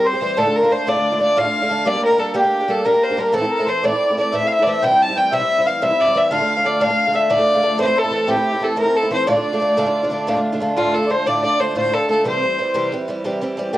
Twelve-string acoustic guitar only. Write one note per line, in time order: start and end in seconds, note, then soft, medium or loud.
0.00 0.14 G3 soft
0.00 0.13 C4 soft
0.00 0.12 G4 medium
0.13 0.21 G3 medium
0.13 0.21 C4 medium
0.13 0.22 G4 medium
0.21 0.37 E3 medium
0.21 0.37 G3 medium
0.21 0.37 C4 medium
0.21 0.37 G4 medium
0.36 0.46 D2 medium
0.36 0.46 A2 medium
0.36 0.46 D3 medium
0.36 0.47 A3 loud
0.36 0.46 D4 medium
0.36 0.45 F4 medium
0.46 0.63 D3 soft
0.46 0.63 A3 soft
0.46 0.62 D4 medium
0.46 0.61 F4 medium
0.62 0.69 D3 soft
0.62 0.70 A3 medium
0.62 0.70 D4 medium
0.62 0.71 F4 medium
0.70 0.86 D3 medium
0.70 0.87 A3 medium
0.70 0.87 D4 medium
0.70 0.87 F4 medium
0.87 0.96 D2 medium
0.87 0.96 A2 medium
0.87 0.96 D3 medium
0.87 0.95 A3 medium
0.87 0.94 D4 medium
0.87 0.94 F4 medium
0.95 1.12 D3 soft
0.95 1.11 A3 soft
0.95 1.11 D4 medium
0.95 1.10 F4 soft
1.11 1.18 D3 soft
1.11 1.19 A3 soft
1.11 1.19 D4 soft
1.11 1.20 F4 soft
1.19 1.35 D3 medium
1.19 1.36 A3 medium
1.19 1.36 D4 medium
1.19 1.36 F4 medium
1.36 1.45 D2 medium
1.36 1.45 A2 medium
1.36 1.45 D3 medium
1.36 1.44 A3 medium
1.36 1.43 D4 medium
1.36 1.42 F4 medium
1.44 1.62 D3 soft
1.44 1.61 A3 soft
1.44 1.61 D4 medium
1.44 1.60 F4 medium
1.61 1.68 D3 soft
1.61 1.69 A3 soft
1.61 1.69 D4 medium
1.61 1.70 F4 medium
1.69 1.85 D3 medium
1.69 1.86 A3 medium
1.69 1.85 D4 medium
1.69 1.86 F4 medium
1.85 1.95 G3 medium
1.85 1.95 A#3 medium
1.85 1.94 D4 medium
1.85 1.93 G4 medium
1.94 2.12 A#3 medium
1.94 2.11 D4 soft
1.94 2.10 G4 medium
2.11 2.17 A#3 soft
2.11 2.18 D4 soft
2.11 2.18 G4 medium
2.18 2.33 G3 medium
2.18 2.33 A#3 medium
2.18 2.33 D4 medium
2.18 2.34 G4 medium
2.34 2.44 G3 medium
2.34 2.43 A#3 medium
2.34 2.43 D4 medium
2.34 2.41 G4 medium
2.42 2.61 A#3 soft
2.42 2.60 D4 soft
2.42 2.59 G4 medium
2.60 2.68 A#3 soft
2.60 2.68 D4 soft
2.60 2.69 G4 medium
2.68 2.84 G3 medium
2.68 2.84 A#3 medium
2.68 2.85 D4 medium
2.68 2.85 G4 medium
2.85 2.94 G3 medium
2.85 2.94 A#3 medium
2.85 2.93 D4 medium
2.85 2.92 G4 medium
2.93 3.11 A#3 soft
2.93 3.09 D4 soft
2.93 3.09 G4 medium
3.10 3.17 A#3 soft
3.10 3.18 D4 medium
3.10 3.18 G4 medium
3.17 3.33 G3 medium
3.17 3.33 A#3 medium
3.17 3.34 D4 medium
3.17 3.34 G4 medium
3.33 3.42 A2 medium
3.33 3.43 E3 medium
3.33 3.43 A3 medium
3.33 3.42 C4 medium
3.33 3.41 E4 medium
3.42 3.60 A3 soft
3.42 3.59 C4 medium
3.42 3.58 E4 medium
3.59 3.66 A3 soft
3.59 3.67 C4 medium
3.59 3.67 E4 medium
3.66 3.83 E3 medium
3.66 3.83 A3 medium
3.66 3.83 C4 medium
3.66 3.84 E4 medium
3.83 3.92 A2 medium
3.83 3.93 E3 medium
3.83 3.93 A3 medium
3.83 3.92 C4 medium
3.83 3.91 E4 medium
3.92 4.10 A3 soft
3.92 4.09 C4 soft
3.92 4.08 E4 medium
4.09 4.17 A3 soft
4.09 4.17 C4 soft
4.09 4.17 E4 soft
4.17 4.32 E3 medium
4.17 4.32 A3 medium
4.17 4.33 C4 medium
4.17 4.33 E4 medium
4.32 4.42 A2 medium
4.32 4.42 E3 medium
4.32 4.42 A3 medium
4.32 4.42 C4 medium
4.32 4.41 E4 medium
4.42 4.60 A3 soft
4.42 4.59 C4 soft
4.42 4.58 E4 medium
4.59 4.66 A3 soft
4.59 4.67 C4 medium
4.59 4.67 E4 medium
4.66 4.82 E3 medium
4.66 4.83 A3 medium
4.66 4.82 C4 medium
4.66 4.83 E4 medium
4.82 4.91 C3 medium
4.82 4.92 E3 medium
4.82 4.92 G3 medium
4.82 4.91 C4 medium
4.82 4.90 E4 medium
4.91 5.09 G3 soft
4.91 5.08 C4 soft
4.91 5.06 E4 medium
5.08 5.15 G3 soft
5.08 5.15 C4 soft
5.08 5.16 E4 soft
5.15 5.31 E3 medium
5.15 5.31 G3 medium
5.15 5.32 C4 medium
5.15 5.32 E4 medium
5.32 5.41 C3 medium
5.32 5.41 E3 medium
5.32 5.41 G3 medium
5.32 5.40 C4 medium
5.32 5.39 E4 medium
5.40 5.58 G3 soft
5.40 5.58 C4 soft
5.40 5.57 E4 medium
5.58 5.65 G3 soft
5.58 5.66 C4 medium
5.58 5.66 E4 soft
5.65 5.81 E3 medium
5.65 5.81 G3 medium
5.65 5.81 C4 medium
5.65 5.81 E4 medium
5.82 5.90 C3 medium
5.82 5.91 E3 medium
5.82 5.91 G3 medium
5.82 5.90 C4 medium
5.82 5.89 E4 medium
5.91 6.07 G3 soft
5.91 6.06 C4 medium
5.91 6.05 E4 medium
6.06 6.14 G3 soft
6.06 6.15 C4 medium
6.06 6.15 E4 medium
6.14 6.30 E3 medium
6.14 6.31 G3 medium
6.14 6.31 C4 medium
6.14 6.32 E4 medium
6.30 6.39 D2 medium
6.30 6.40 A2 medium
6.30 6.40 D3 medium
6.30 6.39 A3 medium
6.30 6.39 D4 medium
6.30 6.38 F4 medium
6.39 6.57 D3 soft
6.39 6.56 A3 soft
6.39 6.56 D4 medium
6.39 6.55 F4 soft
6.56 6.63 D3 soft
6.56 6.64 A3 soft
6.56 6.65 D4 medium
6.56 6.64 F4 medium
6.64 6.80 D3 medium
6.64 6.80 A3 medium
6.64 6.80 D4 medium
6.64 6.80 F4 medium
6.80 6.89 D2 medium
6.80 6.89 A2 medium
6.80 6.89 D3 medium
6.80 6.89 A3 medium
6.80 6.88 D4 medium
6.80 6.88 F4 medium
6.89 7.06 D3 soft
6.89 7.06 A3 soft
6.89 7.04 D4 medium
6.89 7.04 F4 soft
7.05 7.12 D3 soft
7.05 7.12 A3 soft
7.05 7.13 D4 soft
7.05 7.14 F4 medium
7.13 7.29 D3 medium
7.13 7.29 A3 medium
7.13 7.29 D4 medium
7.13 7.30 F4 medium
7.29 7.38 D2 medium
7.29 7.39 A2 medium
7.29 7.38 D3 medium
7.29 7.37 A3 medium
7.29 7.37 D4 medium
7.29 7.36 F4 medium
7.37 7.55 D3 medium
7.37 7.55 A3 medium
7.37 7.54 D4 soft
7.37 7.53 F4 medium
7.54 7.61 D3 medium
7.54 7.62 A3 medium
7.54 7.62 D4 soft
7.54 7.63 F4 medium
7.62 7.78 D3 medium
7.62 7.78 A3 medium
7.62 7.79 D4 medium
7.62 7.79 F4 medium
7.78 7.87 A2 medium
7.78 7.88 E3 medium
7.78 7.86 A3 medium
7.78 7.87 C4 medium
7.78 7.85 E4 medium
7.87 8.03 A3 medium
7.87 8.04 C4 soft
7.87 8.03 E4 medium
8.04 8.11 A3 medium
8.04 8.11 C4 soft
8.04 8.12 E4 medium
8.11 8.26 E3 medium
8.11 8.27 A3 medium
8.11 8.27 C4 medium
8.11 8.28 E4 medium
8.27 8.37 A2 medium
8.27 8.37 E3 medium
8.27 8.36 A3 medium
8.27 8.37 C4 medium
8.27 8.35 E4 medium
8.36 8.53 A3 medium
8.36 8.54 C4 soft
8.36 8.52 E4 medium
8.53 8.61 A3 soft
8.53 8.60 C4 soft
8.53 8.61 E4 medium
8.60 8.76 E3 medium
8.60 8.76 A3 medium
8.60 8.76 C4 medium
8.60 8.76 E4 medium
8.76 8.86 A2 medium
8.76 8.87 E3 medium
8.76 8.85 A3 medium
8.76 8.86 C4 medium
8.76 8.84 E4 medium
8.85 9.03 A3 soft
8.85 9.04 C4 soft
8.85 9.02 E4 medium
9.03 9.11 A3 medium
9.03 9.10 C4 soft
9.03 9.11 E4 medium
9.11 9.27 E3 medium
9.11 9.27 A3 medium
9.11 9.28 C4 medium
9.11 9.28 E4 medium
9.27 9.36 D2 medium
9.27 9.36 A2 medium
9.27 9.36 D3 medium
9.27 9.36 A3 loud
9.27 9.35 D4 medium
9.27 9.34 F4 medium
9.35 9.53 D3 soft
9.35 9.53 A3 soft
9.35 9.52 D4 medium
9.35 9.52 F4 medium
9.53 9.59 D3 soft
9.53 9.60 A3 soft
9.53 9.61 D4 medium
9.53 9.61 F4 medium
9.60 9.77 D3 medium
9.60 9.77 A3 medium
9.60 9.77 D4 medium
9.60 9.77 F4 medium
9.77 9.86 D2 medium
9.77 9.86 A2 medium
9.77 9.87 D3 medium
9.77 9.86 A3 medium
9.77 9.85 D4 medium
9.77 9.84 F4 medium
9.86 10.03 D3 soft
9.86 10.03 A3 medium
9.86 10.02 D4 medium
9.86 10.02 F4 medium
10.03 10.09 D3 soft
10.03 10.10 A3 medium
10.03 10.10 D4 medium
10.03 10.11 F4 medium
10.10 10.26 D3 medium
10.10 10.27 A3 medium
10.10 10.27 D4 medium
10.10 10.27 F4 medium
10.27 10.36 D2 medium
10.27 10.36 A2 medium
10.27 10.36 D3 medium
10.27 10.36 A3 medium
10.27 10.35 D4 medium
10.27 10.35 F4 medium
10.36 10.53 D3 soft
10.36 10.53 A3 soft
10.36 10.52 D4 medium
10.36 10.51 F4 medium
10.53 10.59 D3 medium
10.53 10.60 A3 medium
10.53 10.61 D4 medium
10.53 10.61 F4 medium
10.60 10.76 D3 medium
10.60 10.76 A3 medium
10.60 10.76 D4 medium
10.60 10.77 F4 medium
10.77 10.94 D2 medium
10.77 10.94 A2 medium
10.77 10.93 D3 medium
10.77 10.94 A3 medium
10.77 10.95 D4 medium
10.77 10.95 F4 medium
10.95 11.08 D3 medium
10.95 11.09 A3 medium
10.95 11.10 D4 medium
10.95 11.10 F4 medium
11.10 11.26 D3 medium
11.10 11.26 A3 medium
11.10 11.26 D4 medium
11.10 11.26 F4 medium
11.26 11.44 D2 medium
11.26 11.44 A2 medium
11.26 11.42 D3 medium
11.26 11.43 A3 medium
11.26 11.43 D4 medium
11.26 11.44 F4 medium
11.43 11.58 D3 medium
11.43 11.59 A3 medium
11.43 11.59 D4 medium
11.43 11.60 F4 medium
11.59 11.74 D3 medium
11.59 11.75 A3 medium
11.59 11.75 D4 medium
11.59 11.75 F4 medium
11.75 11.93 D2 medium
11.75 11.93 A2 medium
11.75 11.91 D3 medium
11.75 11.91 A3 medium
11.75 11.92 D4 medium
11.75 11.93 F4 medium
11.92 12.07 D3 medium
11.92 12.08 A3 medium
11.92 12.08 D4 medium
11.92 12.09 F4 medium
12.08 12.25 D3 medium
12.08 12.25 A3 medium
12.08 12.25 D4 medium
12.08 12.26 F4 medium
12.24 12.42 C3 medium
12.24 12.41 E3 medium
12.24 12.41 G3 medium
12.24 12.42 C4 medium
12.24 12.43 G4 medium
12.42 12.57 E3 soft
12.42 12.58 G3 soft
12.42 12.58 C4 medium
12.42 12.59 G4 medium
12.58 12.73 E3 medium
12.58 12.73 G3 medium
12.58 12.74 C4 medium
12.58 12.74 G4 medium
12.74 12.92 C3 medium
12.74 12.91 E3 medium
12.74 12.92 G3 medium
12.74 12.92 C4 medium
12.74 12.92 G4 loud
12.92 13.07 E3 medium
12.92 13.07 G3 medium
12.92 13.08 C4 medium
12.92 13.09 G4 medium
13.08 13.23 E3 medium
13.08 13.24 G3 medium
13.08 13.24 C4 medium
13.08 13.25 G4 medium
13.24 13.42 C3 medium
13.24 13.40 E3 medium
13.24 13.41 G3 medium
13.24 13.42 C4 medium
13.24 13.42 G4 medium
13.41 13.56 E3 medium
13.41 13.57 G3 medium
13.41 13.58 C4 medium
13.41 13.58 G4 medium
13.57 13.73 E3 medium
13.57 13.72 G3 medium
13.57 13.74 C4 medium
13.57 13.73 G4 medium
13.73 13.78 G3 medium
13.73 13.78 A#3 medium
13.73 13.78 D4 medium
13.73 13.78 G4 medium